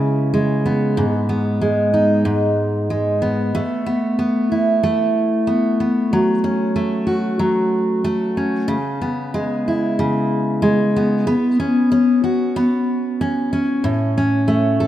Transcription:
steel-string acoustic guitar
Already playing: C#3 G#3 B3 E4
0.34 G#3
0.66 B3
0.97 G#2
1.29 B3
1.61 G#3
1.94 D#4
2.25 G#2
2.90 G#3
3.22 B3
3.55 A3
3.86 B3
4.19 B3
4.52 E4
4.83 A3
5.47 B3
5.80 B3
6.13 F#3
6.44 C#4
6.76 A3
7.07 F#4
7.39 F#3
8.04 A3
8.37 C#4
8.68 C#3
9.02 B3
9.34 G#3
9.68 E4
9.99 C#3
10.62 G#3
10.96 B3
11.27 B3
11.60 C#4
11.92 C#4
12.24 F#4
12.56 B3
13.21 C#4
13.53 C#4
13.84 A2
14.18 C#4
14.48 A3
14.80 A4

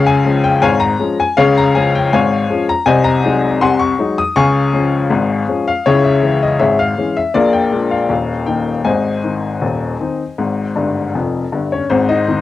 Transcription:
upright piano
Already playing: C#2 C#3
0.07 G#5
0.25 F3 G#3 C#4
0.44 G5
0.62 G#1 G#2 C#5 F5 G#5
0.80 A#5
0.99 F3 G#3 C#4
1.20 G#5
1.37 C#2 C#3 G#4 C#5 F5
1.58 A#5
1.75 F3 G#3 C#4 G#5
1.95 G5
2.13 G#1 G#2 C#5 F5 G#5
2.50 F3 G#3 C#4
2.69 A#5
2.86 C2 C3 C5 D#5 G#5
3.04 A#5
3.24 F#3 G#3 D#4
3.61 C2 C3 F#5 G#5 C6
3.79 C#6
3.99 F#3 G#3 D#4
4.18 D#6
4.36 C#2 C#3 F5 G#5 C#6
4.73 F3 G#3 C#4
5.10 G#1 G#2
5.48 F3 G#3 C#4
5.68 F5
5.86 C#2 C#3 E4 G#4 C#5
6.04 E5
6.22 E3 G#3 C#4
6.43 D#5
6.59 G#1 G#2 G#4 C#5 E5
6.79 F5
6.98 E3 G#3 C#4
7.17 E5
7.34 A#1 A#2 G#4 A#4 D5
7.53 G5
7.72 F3 G#3 D4
7.91 F5
8.09 D#1 D#2
8.47 D#3 A#3 D#4 G5
8.85 G#1 G#2 C5 D#5 G#5
9.24 D#3 C4 D#4
9.62 D#1 D#2
10.00 D#3 C4 D#4
10.38 G#1 G#2
10.76 G1 G2
11.15 F1 F2
11.52 G1 G2
11.72 C#4 C#5
11.90 G#1 G#2 C4 C5
12.09 D#4 D#5
12.28 D#3 C4 D#4

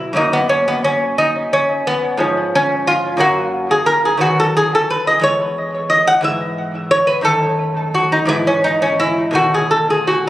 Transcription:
lute
Already playing: B2 F#3 D#4 E4
0.13 F#2 F#3 A#3 D#4
0.33 B3
0.49 C#4
0.68 B3
0.84 C#4
1.18 D#4
1.53 C#4
1.87 B3
2.17 G#2 F3 C#4
2.55 C#4
2.87 F4
3.17 F#2 F#3 A#3 F#4
3.71 G#4
3.86 A#4
4.05 G#4
4.17 D#3 F#3 B3 F#4
4.40 A4
4.57 G#4
4.75 A4
4.90 B4
5.07 D#5
5.20 E3 G#3 B3 C#5
5.90 D#5
6.07 F#5
6.21 G#2 E3 B3 E5
6.91 C#5
7.07 B4
7.21 F#2 D#3 A3 A4
7.94 F#4
8.12 D#4
8.25 G#2 E3 B3 E4
8.47 C#4
8.64 D#4
8.82 C#4
9.00 E4
9.31 B2 D#3 A3
9.35 F#4
9.54 G#4
9.71 A4
9.90 G#4
10.07 F#4

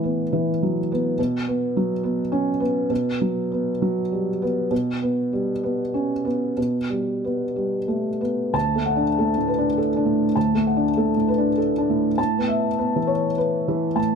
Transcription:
felt piano
Already playing: A2 E3 B3
0.03 B3
0.33 E3
0.63 F#3
0.92 B3
1.19 B2
1.47 B3
1.77 F#3
2.03 B3
2.32 C#4
2.60 B3
2.90 B2
3.21 F#3
3.51 B3
3.82 F#3
4.12 G3
4.42 B3
4.71 B2
5.02 B3
5.33 G3
5.63 B3
5.94 C#4
6.25 B3
6.57 B2
6.90 G3
7.24 B3
7.56 G3
7.88 A3
8.21 B3
8.53 D2 A5
8.75 A3
8.86 F#5
8.96 D4
9.18 A3 A4
9.37 A2
9.47 B4
9.58 D4
9.78 A4
9.96 D4
10.05 A2
10.36 D2 A5
10.54 A3
10.67 F#5
10.76 D4
10.97 A3 A4
11.16 A2
11.28 B4
11.38 D4
11.58 A4
11.78 D4
11.90 A2
12.18 A2 A5
12.38 B3
12.48 E5
12.78 B3 B4
12.96 E3
13.07 C#5
13.38 B4
13.68 E3
13.95 A2 A5

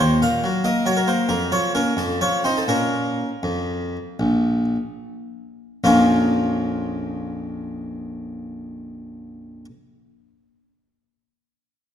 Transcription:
harpsichord
0.00 D#2 C5
0.22 A#2 F5
0.44 F#3
0.64 A#3 D#5
0.86 F#3 C#5
0.97 A#4
1.08 A#3 C5
1.29 F2 A#4
1.52 F3 C#5
1.75 A#3 C#4 A#4
1.97 F2 A4
2.21 F3 C#5
2.44 C4 D#4 C5
2.57 A4
2.68 A#2 A#3 C#4 A#4
3.43 F2
4.20 A#1
5.84 A#1 F2 F3 A#3 C#4 F4

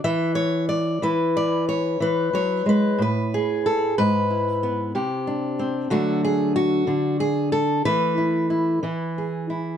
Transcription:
steel-string acoustic guitar
0.04 E3 E5
0.35 C#5
0.69 D5
1.02 E3 E4 B4
1.37 D5
1.69 C#5
2.00 E3 B4
2.33 F#3 C#5
2.66 G#3 B4
2.98 A2 B4
3.34 G#4
3.66 A4
3.98 G#2 B4
4.30 E4
4.63 B3
4.95 C3 G4
5.27 D4
5.59 C4
5.90 D3 F#3 A3 D4 F#4
6.25 G#4
6.56 F#4
6.87 D3 D4
7.20 G#4
7.52 A4
7.85 E3 A3 E4 B4
8.18 E4
8.50 E4
8.83 E3 E4
9.18 G#4
9.50 E4

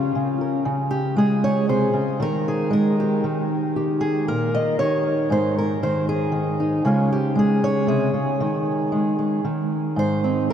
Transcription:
steel-string acoustic guitar
Already playing: C#3 C#4 F4
0.15 C#3
0.41 A#4
0.65 C#3
0.91 G4
1.16 G#3 G#4
1.44 C#5
1.69 C3 C5
1.93 C#3
2.20 D#3 A#4
2.48 G#4
2.71 G#3 A#4
3.00 G4
3.24 D#3
3.76 G4
4.01 G#4
4.28 A#2 A#4
4.55 D#5
4.79 D#3 C#5
5.30 G#2 C5
5.58 A#4
5.83 D#3 C5
6.09 G#4
6.32 D#3
6.60 D#4
6.85 C#3 G#3 C#4 F4 C#5
7.12 G4
7.35 G#3 G#4
7.64 C#5
7.87 C3 G#4
8.14 C#3
8.40 D#3
8.92 G#3
9.19 G#3
9.45 D#3
9.96 G#2 C5
10.24 C4 D#4

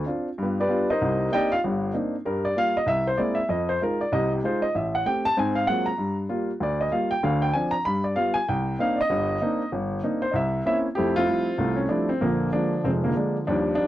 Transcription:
upright piano
0.06 C4 D4 F4
0.38 G2
0.42 B3 F4 G4 B4
0.60 D4 G4 B4 D5
0.68 G3 B3 F4
0.90 D#4 A#4 C5 D#5
1.01 C2 C3
1.31 A#3 C4 D4 D#4 G4 D5 D#5 G5
1.52 F4 F5
1.64 G1 G2
1.93 A#3 C4 D4 D#4
2.25 G2 G3 A#4
2.45 D5
2.56 G3 A#3 F4 F5
2.77 D#5
2.86 C2 E5
3.07 C5
3.18 G#3 A#3 C4 E4 D5
3.35 E5
3.49 F2 D#5
3.69 C5
3.82 G#3 D#4 F4 A#4
4.01 D5
4.12 C2 C3 D#5
4.33 G4
4.44 G#3 D#4 F4 C5
4.62 D#5
4.75 A1 E5
4.95 F#5
5.06 A3 C4 G4 G5
5.25 A5
5.37 G#2 C4 G#5
5.55 F5
5.67 F#3 G#3 A#3 C4 F4 F#5
5.86 A#5
5.98 G2
6.29 G3 A#3 F4
6.60 D2 D5
6.81 D#5
6.92 G3 A#3 F4 F5
7.11 G5
7.23 D2 D3 F5
7.42 G5
7.53 F3 C4 D4 G#5
7.71 A#5
7.85 G2 B5
8.04 D5
8.16 G3 B3 F4 F5
8.34 G#5
8.48 C2 G5
8.79 A#3 C4 D4 D#4 F5
9.01 D#5
9.10 G1 G2
9.42 A#3 C4 D4 D#4
9.72 G1
10.03 A#3 C4 D4 D#4
10.22 C5
10.31 C2 D#5
10.36 E5
10.65 A#3 C4 C#4 E4 E5
10.95 F2 A3 C4 E4 G4
11.16 A3 C4 F4
11.28 F3 G3 A3 E4
11.58 C2 A3 C4 F4
11.76 C#4
11.89 F3 G3 A3 D4 E4
12.09 C4
12.21 A#1 D3 F3 A#3
12.52 F3 G#3 A#3 D4
12.84 F1 F3 G#3 C4
13.04 D3 F3 A#3
13.16 G#3 A#3 D4
13.47 D#2 F3 G3 D4
13.75 G3 D4 D#4 F4

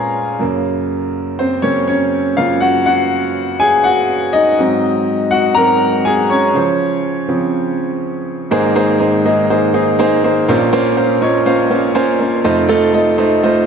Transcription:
upright piano
Already playing: A#2 G#3 C#4 F4 G#4 A#4 F5 G#5 A#5
0.39 F#2 C#3 A#3
1.39 C4 C5
1.62 F#2 C#3 A#3 C#4 C#5
1.88 C#4 C#5
2.37 F#2 C#3 A#3 F4 F5
2.61 F#4 F#5
2.86 F#4 F#5
3.60 G#4 G#5
3.84 F#4 F#5
4.33 D#4 D#5
4.59 G#2 F#3 C4
5.31 F#4 F#5
5.55 G#2 F#3 C4 A#4 A#5
6.05 G#4 G#5
6.30 C#4 C#5
6.54 C#3 F3 C5
7.28 C#3 F3 C4
8.51 G#1 G#2 A#3 D#4 G#4 C5
8.75 A#3 D#4 G#4 C5
9.00 A#3 D#4 G#4 C5
9.25 A#3 D#4 G#4 D#5
9.50 A#3 D#4 G#4 C5
9.74 A#3 D#4 G#4 C5
9.99 A#3 D#4 G#4 C5
10.24 A#3 D#4 G#4 C5
10.48 A#1 A#2 A#3 C#4 F4 C5
10.73 A#3 C#4 F4 C5
10.97 A#3 C#4 F4 C5
11.21 A#3 C#4 F4 C#5 D#5
11.46 A#3 C#4 F4 C5 F5
11.70 A#3 C#4 F4 C5
11.95 A#3 C#4 F4 C5 G#5
12.19 A#3 C#4 F4 C5
12.44 F1 F2 A3 D#4 F4 C5
12.69 A3 D#4 F4 A4
12.93 A3 D#4 F4 D#5
13.18 A3 D#4 F4 C5
13.43 A3 D#4 F4 C5

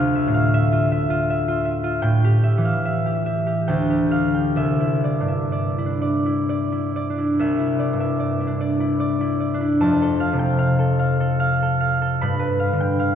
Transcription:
harp
Already playing: D2 E4 F4 E5 F5
0.15 E5
0.27 A2
0.34 F5
0.54 E5
0.72 F4
0.92 E5
1.10 F4
1.30 E5
1.48 F4
1.65 E5
1.84 F4
2.02 A2 G5
2.24 G4
2.43 E5
2.58 E3
2.65 F5
2.85 E5
3.06 G4
3.26 E5
3.47 G4
3.68 D2 G5
3.90 G4
4.11 F5
4.34 G5
4.56 C2 E5
4.80 E4
5.04 D5
5.20 G2
5.28 E5
5.52 D5
5.78 E4
5.86 D4
6.02 D5
6.26 E4
6.49 D5
6.72 E4
6.96 D5
7.10 D4
7.18 E4
7.39 C2 E5
7.59 E4
7.79 D5
7.93 G2
8.00 E5
8.20 D5
8.41 E4
8.47 D4
8.61 D5
8.80 E4
9.00 D5
9.21 E4
9.40 D5
9.54 D4
9.61 E4
9.81 F2 A5
10.02 A4
10.20 F5
10.33 C3
10.39 G5
10.59 F5
10.79 A4
10.99 F5
11.20 A4
11.40 F5
11.62 A4
11.80 F5
12.02 A4
12.21 G2 B5
12.39 B4
12.59 F5
12.73 D3
12.80 G5
12.99 F5

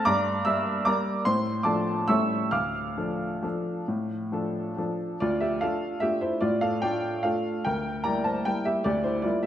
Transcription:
upright piano
0.05 G2 D5 A#5 D6
0.45 G3 A#3 A#4 E5 E6
0.85 G3 A#3 A#4 D5 A#5 D6
1.25 A2 C5 C6
1.63 F3 D4 A4 D5 A5 D6
2.08 A2 G3 C#4 A4 E5 C#6 E6
2.51 D2 F5 D6 F6
2.97 F3 D4 A4
3.43 F3 D4 A4
3.88 A2
4.32 F3 D4 A4
4.77 F3 D4 A4
5.20 D2 F4 D5
5.40 G4 E5
5.61 A3 D4 F4 A4 F5
6.00 A3 D4 F4 G4 E5
6.21 E4 C5
6.41 A2 F4 D5
6.61 A4 F5
6.82 A3 D4 F4 D5 G5
7.23 A3 D4 F4 A4 F5
7.65 D2 A#4 G5
8.04 G3 A#3 E4 D5 A#5
8.24 C5 A5
8.45 G3 A#3 E4 A#4 G5
8.65 G4 E5
8.84 D2 G4 D5
9.04 E4 C5
9.22 G3 A#3 E4 F4 D5
9.43 E5

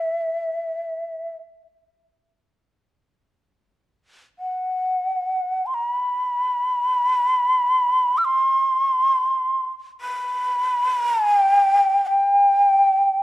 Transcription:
shakuhachi
Already playing: E5
4.39 F#5
5.66 C6
5.74 A#5
5.89 B5
8.18 E6
8.25 C6
10.01 B5
11.00 A#5
11.13 A5
11.25 G#5
11.38 G5
12.07 G5

